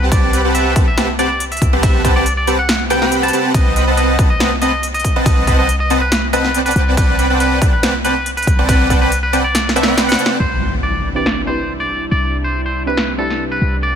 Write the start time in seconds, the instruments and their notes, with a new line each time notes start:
Already playing: 808-style bass C2
0.12 supersaw synth C4 G4 B4 F#5 A5, clean electric guitar D5, kick, closed hi-hat, ride
0.33 supersaw synth C4 G4 B4 F#5 B5, closed hi-hat
0.45 supersaw synth C4 G4 B4 F#5 A5
0.55 clean electric guitar E5, closed hi-hat
0.76 supersaw synth C4 G4 B4 F#5 A5, kick, closed hi-hat
0.88 clean electric guitar E5
0.97 supersaw synth C4 G4 B4 F#5 A5, snare, closed hi-hat
1.19 supersaw synth C4 G4 B4 F#5 A5, clean electric guitar D5, closed hi-hat
1.40 closed hi-hat
1.52 clean electric guitar E5, closed hi-hat
1.57 closed hi-hat
1.62 808-style bass C2, kick, closed hi-hat
1.73 supersaw synth C4 G4 B4 F#5 A5
1.83 clean electric guitar E5, kick, closed hi-hat, ride
2.04 supersaw synth C4 G4 B4 F#5 A5, kick, closed hi-hat
2.16 supersaw synth C4 G4 B4 F#5 A5, clean electric guitar D5
2.26 closed hi-hat
2.37 clean electric guitar D5
2.47 supersaw synth C4 G4 B4 F#5 A5, closed hi-hat
2.59 clean electric guitar F#5
2.69 snare, closed hi-hat
2.90 supersaw synth C4 G4 B4 F#5 A5, clean electric guitar G5, closed hi-hat
3.01 supersaw synth C4 G4 B4 F#5 B5, snare
3.12 closed hi-hat
3.23 clean electric guitar A5, closed hi-hat
3.28 closed hi-hat
3.33 supersaw synth C4 G4 B4 F#5 A5, closed hi-hat
3.54 808-style bass C2, supersaw synth C4 D#5 A5, clean electric guitar D#5, kick, closed hi-hat, ride
3.76 supersaw synth C4 B4 D#5 F#5 B5, closed hi-hat
3.87 supersaw synth C4 B4 D#5 F#5 A5
3.97 clean electric guitar D#5, closed hi-hat
4.19 supersaw synth C4 B4 D#5 F#5 A5, kick, closed hi-hat
4.30 clean electric guitar D#5
4.40 supersaw synth C4 B4 D#5 F#5 A5, snare, closed hi-hat
4.62 supersaw synth C4 B4 D#5 F#5 A5, clean electric guitar D#5, closed hi-hat
4.83 closed hi-hat
4.94 clean electric guitar D#5, closed hi-hat
5.00 closed hi-hat
5.04 kick, closed hi-hat
5.16 supersaw synth C4 B4 D#5 F#5 A5
5.26 808-style bass C2, clean electric guitar D#5, kick, closed hi-hat, ride
5.47 supersaw synth C4 B4 D#5 F#5 A5, kick, closed hi-hat
5.59 supersaw synth C4 B4 D#5 F#5 A5, clean electric guitar D#5
5.69 closed hi-hat
5.80 clean electric guitar D#5
5.90 supersaw synth C4 B4 D#5 F#5 A5, closed hi-hat
6.01 clean electric guitar B4
6.12 snare, closed hi-hat
6.33 supersaw synth C4 B4 D#5 F#5 A5, clean electric guitar B4, closed hi-hat
6.45 snare
6.54 supersaw synth C4 B4 D5 F#5 G5 A5, closed hi-hat
6.66 clean electric guitar B4, closed hi-hat
6.71 closed hi-hat
6.76 808-style bass C2, closed hi-hat
6.97 supersaw synth B4 D5 G5, clean electric guitar B4, kick, closed hi-hat, ride
7.19 supersaw synth C4 B4 D5 F#5 G5 B5, closed hi-hat
7.30 supersaw synth C4 B4 D5 F#5 G5 A5
7.40 clean electric guitar B4, closed hi-hat
7.62 supersaw synth C4 B4 D5 F#5 G5 A5, kick, closed hi-hat
7.73 clean electric guitar B4
7.83 supersaw synth C4 B4 D5 F#5 G5 A5, snare, closed hi-hat
8.04 supersaw synth C4 B4 D5 F#5 G5 A5, clean electric guitar B4, closed hi-hat
8.26 closed hi-hat
8.37 clean electric guitar B4, closed hi-hat
8.43 closed hi-hat
8.47 808-style bass C2, kick, closed hi-hat
8.59 supersaw synth C4 B4 D5 F#5 G5 A5
8.69 clean electric guitar B4, kick, closed hi-hat, ride
8.90 supersaw synth C4 B4 D5 F#5 G5 A5, kick, closed hi-hat
9.01 supersaw synth C4 B4 D5 F#5 G5 A5, clean electric guitar B4
9.12 closed hi-hat
9.23 clean electric guitar B4
9.33 supersaw synth C4 B4 D5 F#5 G5 A5, closed hi-hat
9.44 clean electric guitar D5
9.55 snare, closed hi-hat
9.69 snare
9.76 supersaw synth C4 B4 D5 F#5 G5 A5, clean electric guitar E5, closed hi-hat
9.83 supersaw synth C4 B4 D5 F#5 G5 B5, snare
9.98 snare, closed hi-hat
10.09 clean electric guitar F#5, snare, closed hi-hat
10.14 closed hi-hat
10.19 supersaw synth C4 B4 D5 F#5 G5 A5, closed hi-hat
10.26 snare
10.40 808-style bass C2, analog synth pad C3 G3 D4 E4, clean electric guitar C5, impact
10.83 clean electric guitar D5
11.15 synth pluck C4 D4 E4 G4 B4, clean electric guitar D5
11.26 snare
11.45 synth pluck C4 D4 E4 G4 B4, clean electric guitar C5
11.80 clean electric guitar D5
12.11 808-style bass C2, clean electric guitar D5
12.44 clean electric guitar C5
12.66 clean electric guitar C5
12.86 synth pluck C4 D4 E4 G4 B4, clean electric guitar B4
12.97 snare
13.18 synth pluck C4 D4 E4 G4 B4, clean electric guitar A4
13.30 snare
13.52 clean electric guitar B4
13.62 808-style bass C2, analog synth pad A3 F#5
13.83 clean electric guitar D5